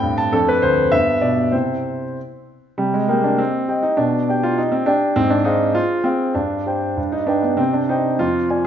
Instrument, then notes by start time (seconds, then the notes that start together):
grand piano
Already playing: A2 C4 G5
0.03 G2
0.18 A5
0.33 F2 D4 A4
0.48 B4
0.62 D2 C5
0.92 G2 B3 E5
1.22 B2 D5
1.52 C3 C4 E4 C5
2.78 C3 G3
2.94 G#3
3.08 A#3 G4 D#5 G5
3.24 D4
3.38 C4
3.68 G4 D#5 G5
3.83 D#4
3.97 B2 D4
4.29 G4 D5 G5
4.43 F4
4.58 D#4
4.72 C4
4.86 D4 G4 D5 G5
5.16 G#2 C4
5.30 D4
5.44 D#4 G#4 C5 F5
5.75 F4
6.04 C4 G#4 C5 F5
6.35 G2 D4
6.66 G4 C5 G5
6.97 G2
7.12 D#4
7.27 D4 G4 B4 G5
7.43 B3
7.57 C3 C4
7.73 D4
7.89 D#4 G4 C5 G5
8.19 F2 F4
8.50 F4 D5 G#5